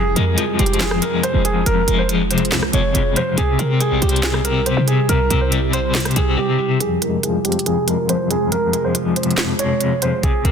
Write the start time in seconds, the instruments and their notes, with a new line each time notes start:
Already playing: 808-style bass F1, clean electric guitar F2, ambient pad C3 G#3 F4 G#4, grand piano G#4
0.16 808-style bass F2, clean electric guitar G#3, grand piano A#4, closed hi-hat
0.38 clean electric guitar F3, grand piano G#4, closed hi-hat
0.59 808-style bass F1, clean electric guitar C4, grand piano G4, closed hi-hat
0.66 closed hi-hat
0.73 closed hi-hat
0.81 clean electric guitar F2, grand piano G#4, snare, clap, closed hi-hat
0.91 cross-stick
1.02 clean electric guitar G#3, grand piano A#4, closed hi-hat
1.23 clean electric guitar F2, grand piano C5, closed hi-hat
1.34 808-style bass F1
1.45 clean electric guitar F2, grand piano G#4, closed hi-hat
1.66 808-style bass F1, clean electric guitar F2, grand piano A#4, closed hi-hat
1.88 808-style bass F1, clean electric guitar G#3, closed hi-hat
1.99 grand piano C5
2.09 clean electric guitar F3, closed hi-hat
2.31 clean electric guitar C3, grand piano C5, closed hi-hat
2.38 closed hi-hat
2.45 closed hi-hat
2.52 808-style bass C2, clean electric guitar F2, snare, clap, closed hi-hat
2.63 cross-stick
2.73 808-style bass F1, clean electric guitar G#3, grand piano C#5, closed hi-hat
2.95 808-style bass F1, clean electric guitar F2, closed hi-hat
3.16 clean electric guitar F2, grand piano C5, closed hi-hat
3.38 808-style bass C2, clean electric guitar C3, ambient pad C3 G3 E4 G4, grand piano G#4, closed hi-hat
3.59 808-style bass C3, clean electric guitar C4, grand piano A#4, closed hi-hat
3.80 clean electric guitar G3, grand piano G#4, closed hi-hat
3.91 808-style bass A#1
4.02 808-style bass C2, grand piano G4, clean electric guitar C5, closed hi-hat
4.09 closed hi-hat
4.16 closed hi-hat
4.23 clean electric guitar C3, grand piano G#4, snare, clap, closed hi-hat
4.34 cross-stick
4.45 clean electric guitar C4, grand piano A#4, closed hi-hat
4.66 clean electric guitar C3, grand piano C5, closed hi-hat
4.77 808-style bass C3
4.88 clean electric guitar C3, grand piano G#4, closed hi-hat
5.09 808-style bass C2, clean electric guitar C3, grand piano A#4, closed hi-hat
5.30 808-style bass C2, clean electric guitar C4, closed hi-hat
5.41 grand piano C5
5.52 clean electric guitar G3, closed hi-hat
5.73 clean electric guitar C5, grand piano C5, closed hi-hat
5.95 clean electric guitar C3, snare, clap, closed hi-hat
6.00 closed hi-hat
6.05 cross-stick, closed hi-hat
6.11 closed hi-hat
6.16 808-style bass C2, clean electric guitar C4, grand piano G#4, closed hi-hat
6.38 clean electric guitar C3, grand piano G4
6.59 clean electric guitar C3
6.80 clean electric guitar F2, ambient pad C3 G#3 F4 G#4, grand piano G#4, closed hi-hat
7.02 clean electric guitar G#3, grand piano A#4, closed hi-hat
7.23 clean electric guitar F3, grand piano G#4, closed hi-hat
7.45 clean electric guitar C4, grand piano G4, closed hi-hat
7.52 closed hi-hat
7.59 closed hi-hat
7.66 clean electric guitar F2, grand piano G#4, closed hi-hat
7.88 clean electric guitar G#3, grand piano A#4, closed hi-hat
8.09 clean electric guitar F2, grand piano C5, closed hi-hat
8.30 clean electric guitar F2, grand piano G#4, closed hi-hat
8.52 clean electric guitar F2, grand piano A#4, closed hi-hat
8.73 clean electric guitar G#3, closed hi-hat
8.84 grand piano C5
8.95 clean electric guitar F3, closed hi-hat
9.16 clean electric guitar C3, grand piano C5, closed hi-hat
9.23 closed hi-hat
9.31 closed hi-hat
9.38 clean electric guitar F2, snare, clap, closed hi-hat
9.59 clean electric guitar G#3, grand piano C#5, closed hi-hat
9.81 clean electric guitar F2, closed hi-hat
10.02 clean electric guitar F2, grand piano C5, closed hi-hat
10.23 ambient pad C3 G3 E4 G4, clean electric guitar C3, grand piano G#4, kick, closed hi-hat
10.45 clean electric guitar C4, grand piano A#4, kick, closed hi-hat